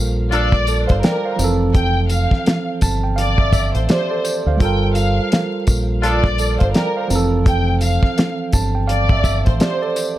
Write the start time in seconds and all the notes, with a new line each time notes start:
Already playing: A#1 G3 F4 A4 A#4 C5 F5
0.31 D4 F4 A4 D5, closed hi-hat
0.52 kick, snare
0.67 A4 D5, closed hi-hat, tambourine
0.87 G1 C5 F5, kick, closed hi-hat
1.02 A#4 D5 G5, snare, closed hi-hat
1.25 C5 F5
1.36 F1 F3 C4, closed hi-hat, tambourine
1.41 E3 A4
1.75 G5, kick, closed hi-hat
2.10 F5, closed hi-hat, tambourine
2.31 kick, snare
2.46 snare, closed hi-hat
2.81 G1 A5, kick, closed hi-hat, tambourine
3.04 G5
3.16 D5 F5, closed hi-hat
3.38 E5, kick
3.53 E5, kick, closed hi-hat, tambourine
3.75 A1 C5, closed hi-hat
3.89 G4 C5 D5, snare, closed hi-hat
4.10 A4 D5
4.24 C5, closed hi-hat, tambourine
4.46 D2 C5 F5
4.57 G1 G3 F4, kick, closed hi-hat
4.62 A4 A#4 G5
4.95 F5, closed hi-hat, tambourine
5.32 snare, closed hi-hat
5.67 A#1, kick, closed hi-hat, tambourine
6.02 D4 F4 A4 D5, closed hi-hat
6.24 kick, snare
6.38 A4 D5, closed hi-hat, tambourine
6.59 G1 C5 F5, kick, closed hi-hat
6.72 A#4 D5 G5, snare, closed hi-hat
6.97 C5 F5
7.08 F1 F3 C4, closed hi-hat, tambourine
7.13 E3 A4
7.46 G5, kick, closed hi-hat
7.81 F5, closed hi-hat, tambourine
8.03 kick, snare
8.18 snare, closed hi-hat
8.53 G1 A5, kick, closed hi-hat, tambourine
8.75 G5
8.87 D5 F5, closed hi-hat
9.09 E5, kick
9.24 E5, kick, closed hi-hat, tambourine
9.46 A1 C5, kick, closed hi-hat
9.59 G4 C5 D5, snare, closed hi-hat
9.82 A4 D5
9.96 C5, closed hi-hat, tambourine